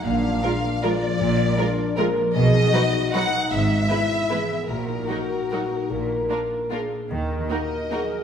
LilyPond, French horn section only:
\new Staff \with { instrumentName = "French horn section" } { \time 3/4 \key ees \minor \tempo 4 = 152 d'4 d'4 f'4 | f'4 d'4 bes'4 | aes'4 fis'4 dis'4~ | dis'4 e'4 gis'4 |
ges'4 ges'2 | bes'2 aes'4 | r4 bes'4 aes'4 | }